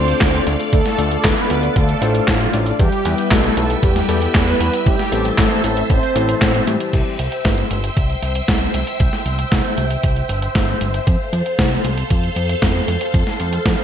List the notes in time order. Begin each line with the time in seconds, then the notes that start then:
Already playing: D2 A3 C4 D4 F4 A4 C5 D5 F5 D6
0.08 closed hi-hat, cabasa
0.21 D2, kick, snare, clap, closed hi-hat, cabasa
0.34 closed hi-hat, cabasa
0.47 D2 A3 D4 F4 D5, closed hi-hat, cabasa
0.60 closed hi-hat, cabasa
0.73 D2 A3 A4, kick, closed hi-hat, cabasa
0.86 snare, closed hi-hat, cabasa
0.98 D2 A3 D4 F4 D5, closed hi-hat, cabasa
1.11 closed hi-hat, cabasa
1.24 D2 B3 B4, kick, snare, clap, closed hi-hat, cabasa
1.37 closed hi-hat, cabasa
1.50 D2 A3 D4 F4 D5, closed hi-hat, cabasa
1.63 closed hi-hat, cabasa
1.76 D2 A3 A4, kick, closed hi-hat, cabasa
1.89 closed hi-hat, cabasa
2.02 A1 A3 D4 F4 C5, closed hi-hat, cabasa
2.15 closed hi-hat, cabasa
2.28 A1 F3 F4, kick, snare, clap, closed hi-hat, cabasa
2.41 closed hi-hat, cabasa
2.53 A1 A3 D4 F4 D5, closed hi-hat, cabasa
2.66 closed hi-hat, cabasa
2.79 E2 G3 G4 B4 E5 G5 E6, kick, closed hi-hat, cabasa
2.92 closed hi-hat, cabasa
3.05 E2 G3 B3 E4 B4, closed hi-hat, cabasa
3.18 closed hi-hat, cabasa
3.31 B1 A3 A4, kick, snare, clap, closed hi-hat, cabasa
3.44 closed hi-hat, cabasa
3.57 B1 G3 B3 E4 B4, closed hi-hat, cabasa
3.70 closed hi-hat, cabasa
3.83 E2 G3 G4, kick, closed hi-hat, cabasa
3.96 snare, closed hi-hat, cabasa
4.09 E2 G3 B3 E4 A4, closed hi-hat, cabasa
4.22 closed hi-hat, cabasa
4.35 E2 B3 B4, kick, snare, clap, closed hi-hat, cabasa
4.48 closed hi-hat, cabasa
4.60 E2 G3 B3 E4 B4, closed hi-hat, cabasa
4.73 closed hi-hat, cabasa
4.86 A1 G3 G4 C5 A5, kick, closed hi-hat, cabasa
4.99 snare, closed hi-hat, cabasa
5.12 A1 E3 A3 C4 A4, closed hi-hat, cabasa
5.25 closed hi-hat, cabasa
5.38 A1 A3 A4, kick, snare, clap, closed hi-hat, cabasa
5.51 closed hi-hat, cabasa
5.64 A1 E3 A3 C4 A4, closed hi-hat, cabasa
5.77 closed hi-hat, cabasa
5.90 A1 C4 C5, kick, closed hi-hat, cabasa
6.03 closed hi-hat, cabasa
6.15 A1 E3 A3 C4 A4, closed hi-hat, cabasa
6.29 closed hi-hat, cabasa
6.42 A1, kick, snare, clap, closed hi-hat, cabasa
6.55 closed hi-hat, cabasa
6.67 A2 E3 G3 C4 G4, closed hi-hat, cabasa
6.80 closed hi-hat, cabasa
6.93 C2 C5 E5 G5 E6, kick, closed hi-hat, crash
7.19 C2, closed hi-hat
7.32 closed hi-hat
7.45 G1, kick, snare, closed hi-hat
7.58 closed hi-hat
7.71 G1, closed hi-hat
7.84 closed hi-hat
7.97 C2, kick, closed hi-hat
8.10 closed hi-hat
8.22 C2, closed hi-hat
8.35 closed hi-hat
8.48 C2, kick, snare, closed hi-hat
8.74 C2, closed hi-hat
8.87 closed hi-hat
9.00 C2, kick, closed hi-hat
9.13 snare
9.26 C2, closed hi-hat
9.39 closed hi-hat
9.52 C2, kick, snare, closed hi-hat
9.65 closed hi-hat
9.78 C2, closed hi-hat
9.90 closed hi-hat
10.03 C2, kick, closed hi-hat
10.16 closed hi-hat
10.29 G1, closed hi-hat
10.42 closed hi-hat
10.55 G1, kick, snare, closed hi-hat
10.68 closed hi-hat
10.81 G1, closed hi-hat
10.94 closed hi-hat
11.07 F2 A4 F5 C6, kick, closed hi-hat
11.33 F2, closed hi-hat
11.46 closed hi-hat
11.59 C2, kick, snare, closed hi-hat
11.72 closed hi-hat
11.85 C2, closed hi-hat
11.98 closed hi-hat
12.10 F2, kick, closed hi-hat
12.23 closed hi-hat
12.36 F2, closed hi-hat
12.49 closed hi-hat
12.62 F2, kick, snare, closed hi-hat
12.88 F2, closed hi-hat
13.01 closed hi-hat
13.14 F2, kick, closed hi-hat
13.27 snare
13.40 F2, closed hi-hat
13.53 closed hi-hat
13.66 F2, kick, snare, closed hi-hat
13.79 closed hi-hat